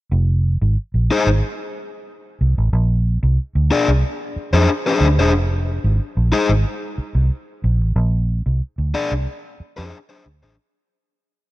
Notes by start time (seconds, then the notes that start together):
0.12 F1
0.62 G#1
0.94 A#1
1.11 D#4 G#4 C5
1.27 G#1
2.41 C2
2.58 A1
2.73 A#1
3.23 C2
3.55 D2
3.71 D4 G#4 D5
3.88 C2
4.36 muted fingered electric bass stroke
4.53 F2 D4 G#4 C5
4.86 D4 G#4 C5
5.00 D2
5.18 E1 D4 G#4 C5
5.33 F1
5.84 G#1
6.17 A#1
6.32 D#4 G#4 C5
6.49 G#1
6.98 muted fingered electric bass stroke
7.15 C2
7.64 A#1
7.81 A1
7.96 A#1
8.46 C2
8.78 D2
8.94 D4 G#4 D5
9.12 C2
9.60 muted fingered electric bass stroke
9.77 F2 D4 G#4 C5
10.09 D4 G#4 C5
10.26 D2
10.43 A1 D4 G#4 C5